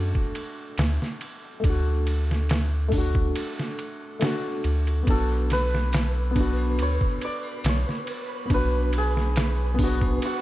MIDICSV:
0, 0, Header, 1, 6, 480
1, 0, Start_track
1, 0, Tempo, 857143
1, 923, Time_signature, 4, 2, 24, 8
1, 5832, End_track
2, 0, Start_track
2, 0, Title_t, "Santur"
2, 0, Program_c, 0, 15
2, 2854, Note_on_c, 0, 69, 94
2, 3095, Note_on_c, 0, 71, 100
2, 3821, Note_on_c, 0, 73, 102
2, 4059, Note_on_c, 0, 74, 102
2, 4092, Note_off_c, 0, 73, 0
2, 4308, Note_on_c, 0, 73, 98
2, 4342, Note_off_c, 0, 74, 0
2, 4494, Note_off_c, 0, 69, 0
2, 4625, Note_off_c, 0, 71, 0
2, 4783, Note_on_c, 0, 71, 104
2, 5028, Note_on_c, 0, 68, 102
2, 5736, Note_off_c, 0, 73, 0
2, 5741, Note_on_c, 0, 66, 89
2, 5832, Note_off_c, 0, 66, 0
2, 5832, Note_off_c, 0, 68, 0
2, 5832, Note_off_c, 0, 71, 0
2, 5832, End_track
3, 0, Start_track
3, 0, Title_t, "Synth texture"
3, 0, Program_c, 1, 99
3, 2842, Note_on_c, 1, 71, 83
3, 5832, Note_off_c, 1, 71, 0
3, 5832, End_track
4, 0, Start_track
4, 0, Title_t, "Felt piano"
4, 0, Program_c, 2, 0
4, 0, Control_c, 2, 64, 127
4, 0, Note_on_c, 2, 57, 84
4, 0, Note_on_c, 2, 62, 82
4, 0, Note_on_c, 2, 66, 96
4, 883, Note_off_c, 2, 57, 0
4, 895, Note_on_c, 2, 57, 74
4, 896, Note_off_c, 2, 62, 0
4, 909, Note_off_c, 2, 66, 0
4, 922, Note_on_c, 2, 62, 64
4, 948, Note_on_c, 2, 66, 75
4, 1601, Note_off_c, 2, 57, 0
4, 1615, Note_off_c, 2, 62, 0
4, 1615, Note_on_c, 2, 57, 82
4, 1628, Note_off_c, 2, 66, 0
4, 1641, Note_on_c, 2, 62, 74
4, 1669, Note_on_c, 2, 66, 90
4, 2326, Note_off_c, 2, 57, 0
4, 2339, Note_off_c, 2, 62, 0
4, 2349, Note_on_c, 2, 57, 80
4, 2353, Note_off_c, 2, 66, 0
4, 2362, Note_on_c, 2, 62, 77
4, 2375, Note_on_c, 2, 66, 94
4, 2809, Note_off_c, 2, 57, 0
4, 2815, Note_off_c, 2, 62, 0
4, 2816, Note_on_c, 2, 59, 68
4, 2822, Note_off_c, 2, 66, 0
4, 2842, Note_on_c, 2, 62, 65
4, 2851, Control_c, 2, 64, 0
4, 2867, Note_on_c, 2, 66, 79
4, 2954, Control_c, 2, 64, 127
4, 3522, Note_off_c, 2, 59, 0
4, 3533, Note_on_c, 2, 59, 85
4, 3535, Note_off_c, 2, 62, 0
4, 3548, Note_off_c, 2, 66, 0
4, 3559, Note_on_c, 2, 62, 76
4, 3586, Note_on_c, 2, 66, 89
4, 4721, Note_off_c, 2, 59, 0
4, 4733, Note_off_c, 2, 62, 0
4, 4735, Note_on_c, 2, 59, 67
4, 4747, Note_off_c, 2, 66, 0
4, 4761, Note_on_c, 2, 62, 67
4, 4788, Note_on_c, 2, 66, 76
4, 5442, Note_off_c, 2, 59, 0
4, 5455, Note_off_c, 2, 62, 0
4, 5456, Note_on_c, 2, 59, 89
4, 5468, Note_off_c, 2, 66, 0
4, 5482, Note_on_c, 2, 62, 80
4, 5508, Note_on_c, 2, 66, 103
4, 5832, Note_off_c, 2, 59, 0
4, 5832, Note_off_c, 2, 62, 0
4, 5832, Note_off_c, 2, 66, 0
4, 5832, End_track
5, 0, Start_track
5, 0, Title_t, "Sub bass"
5, 0, Program_c, 3, 38
5, 0, Note_on_c, 3, 42, 95
5, 74, Note_off_c, 3, 42, 0
5, 438, Note_on_c, 3, 38, 85
5, 551, Note_off_c, 3, 38, 0
5, 918, Note_on_c, 3, 38, 90
5, 1859, Note_off_c, 3, 38, 0
5, 2601, Note_on_c, 3, 38, 78
5, 2814, Note_off_c, 3, 38, 0
5, 2840, Note_on_c, 3, 35, 91
5, 3799, Note_on_c, 3, 38, 92
5, 3807, Note_off_c, 3, 35, 0
5, 3912, Note_off_c, 3, 38, 0
5, 4280, Note_on_c, 3, 35, 88
5, 4393, Note_off_c, 3, 35, 0
5, 4762, Note_on_c, 3, 35, 93
5, 5700, Note_off_c, 3, 35, 0
5, 5832, End_track
6, 0, Start_track
6, 0, Title_t, "Drums"
6, 85, Note_on_c, 9, 36, 81
6, 141, Note_off_c, 9, 36, 0
6, 196, Note_on_c, 9, 51, 61
6, 252, Note_off_c, 9, 51, 0
6, 435, Note_on_c, 9, 51, 82
6, 443, Note_on_c, 9, 38, 110
6, 491, Note_off_c, 9, 51, 0
6, 499, Note_off_c, 9, 38, 0
6, 572, Note_on_c, 9, 38, 40
6, 628, Note_off_c, 9, 38, 0
6, 677, Note_on_c, 9, 51, 61
6, 733, Note_off_c, 9, 51, 0
6, 917, Note_on_c, 9, 36, 104
6, 918, Note_on_c, 9, 51, 81
6, 973, Note_off_c, 9, 36, 0
6, 974, Note_off_c, 9, 51, 0
6, 1158, Note_on_c, 9, 51, 64
6, 1214, Note_off_c, 9, 51, 0
6, 1295, Note_on_c, 9, 38, 45
6, 1351, Note_off_c, 9, 38, 0
6, 1397, Note_on_c, 9, 51, 78
6, 1405, Note_on_c, 9, 38, 108
6, 1453, Note_off_c, 9, 51, 0
6, 1461, Note_off_c, 9, 38, 0
6, 1634, Note_on_c, 9, 46, 71
6, 1637, Note_on_c, 9, 36, 88
6, 1690, Note_off_c, 9, 46, 0
6, 1693, Note_off_c, 9, 36, 0
6, 1764, Note_on_c, 9, 36, 82
6, 1820, Note_off_c, 9, 36, 0
6, 1879, Note_on_c, 9, 51, 85
6, 1935, Note_off_c, 9, 51, 0
6, 2013, Note_on_c, 9, 38, 43
6, 2069, Note_off_c, 9, 38, 0
6, 2120, Note_on_c, 9, 51, 63
6, 2176, Note_off_c, 9, 51, 0
6, 2357, Note_on_c, 9, 51, 79
6, 2365, Note_on_c, 9, 38, 107
6, 2413, Note_off_c, 9, 51, 0
6, 2421, Note_off_c, 9, 38, 0
6, 2599, Note_on_c, 9, 51, 65
6, 2655, Note_off_c, 9, 51, 0
6, 2728, Note_on_c, 9, 51, 39
6, 2784, Note_off_c, 9, 51, 0
6, 2839, Note_on_c, 9, 36, 110
6, 2840, Note_on_c, 9, 51, 89
6, 2895, Note_off_c, 9, 36, 0
6, 2896, Note_off_c, 9, 51, 0
6, 3081, Note_on_c, 9, 51, 64
6, 3090, Note_on_c, 9, 38, 46
6, 3137, Note_off_c, 9, 51, 0
6, 3146, Note_off_c, 9, 38, 0
6, 3217, Note_on_c, 9, 38, 48
6, 3273, Note_off_c, 9, 38, 0
6, 3318, Note_on_c, 9, 82, 70
6, 3320, Note_on_c, 9, 51, 84
6, 3329, Note_on_c, 9, 38, 104
6, 3374, Note_off_c, 9, 82, 0
6, 3376, Note_off_c, 9, 51, 0
6, 3385, Note_off_c, 9, 38, 0
6, 3560, Note_on_c, 9, 36, 87
6, 3561, Note_on_c, 9, 51, 67
6, 3616, Note_off_c, 9, 36, 0
6, 3617, Note_off_c, 9, 51, 0
6, 3681, Note_on_c, 9, 81, 68
6, 3737, Note_off_c, 9, 81, 0
6, 3801, Note_on_c, 9, 51, 82
6, 3857, Note_off_c, 9, 51, 0
6, 3926, Note_on_c, 9, 36, 89
6, 3982, Note_off_c, 9, 36, 0
6, 4040, Note_on_c, 9, 51, 62
6, 4096, Note_off_c, 9, 51, 0
6, 4161, Note_on_c, 9, 81, 75
6, 4217, Note_off_c, 9, 81, 0
6, 4279, Note_on_c, 9, 82, 81
6, 4281, Note_on_c, 9, 51, 81
6, 4289, Note_on_c, 9, 38, 106
6, 4335, Note_off_c, 9, 82, 0
6, 4337, Note_off_c, 9, 51, 0
6, 4345, Note_off_c, 9, 38, 0
6, 4418, Note_on_c, 9, 38, 41
6, 4474, Note_off_c, 9, 38, 0
6, 4520, Note_on_c, 9, 51, 65
6, 4576, Note_off_c, 9, 51, 0
6, 4760, Note_on_c, 9, 36, 103
6, 4760, Note_on_c, 9, 51, 87
6, 4816, Note_off_c, 9, 36, 0
6, 4816, Note_off_c, 9, 51, 0
6, 4999, Note_on_c, 9, 51, 63
6, 5055, Note_off_c, 9, 51, 0
6, 5135, Note_on_c, 9, 38, 43
6, 5191, Note_off_c, 9, 38, 0
6, 5241, Note_on_c, 9, 51, 81
6, 5243, Note_on_c, 9, 82, 69
6, 5249, Note_on_c, 9, 38, 105
6, 5297, Note_off_c, 9, 51, 0
6, 5299, Note_off_c, 9, 82, 0
6, 5305, Note_off_c, 9, 38, 0
6, 5481, Note_on_c, 9, 36, 90
6, 5481, Note_on_c, 9, 46, 76
6, 5537, Note_off_c, 9, 36, 0
6, 5537, Note_off_c, 9, 46, 0
6, 5608, Note_on_c, 9, 36, 80
6, 5612, Note_on_c, 9, 81, 67
6, 5664, Note_off_c, 9, 36, 0
6, 5668, Note_off_c, 9, 81, 0
6, 5724, Note_on_c, 9, 51, 87
6, 5780, Note_off_c, 9, 51, 0
6, 5832, End_track
0, 0, End_of_file